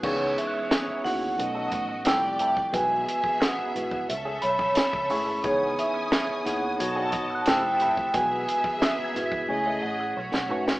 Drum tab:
CC |x---------------|----------------|----------------|----------------|
HH |--x-x-o-x-x-x-x-|x-x-x-x-x-x-x-o-|x-x-x-x-x-x-x-x-|x-x-x-x---------|
SD |----o-o-----o---|----o-------o---|----o-o-----o---|----o-o------o-o|
BD |o---------o----o|o--o---o---o-o--|o---------o----o|o--o---o--------|